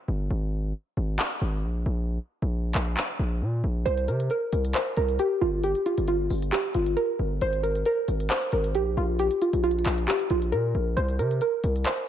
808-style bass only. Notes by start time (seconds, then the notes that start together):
0.08 G1
0.30 G#1
0.97 G#1
1.41 G#1
1.64 A#1
1.86 A#1
2.42 A#1
2.75 A#1
3.19 A#1
3.42 A#2
3.64 A#1
3.86 C2
4.08 C3
4.53 C2
4.97 C2
5.42 G1
5.98 G1
6.30 G1
6.75 G1
7.19 G1
7.42 G#1
8.08 G#1
8.53 G#1
8.75 A#1
8.97 A#1
9.53 A#1
9.86 A#1
10.30 A#1
10.53 A#2
10.75 A#1
10.97 C2
11.19 C3
11.64 C2